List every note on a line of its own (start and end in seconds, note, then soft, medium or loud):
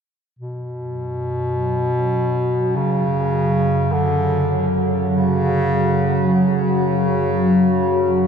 0.37 8.27 F#2 medium
0.37 2.77 B2 medium
0.37 8.27 F#3 medium
0.37 8.27 C#4 medium
1.86 8.27 C#5 medium
2.76 3.94 C#3 medium
3.07 8.27 F#5 medium
3.92 4.82 D3 medium
5.10 6.23 C#3 loud
6.28 8.27 C#3 medium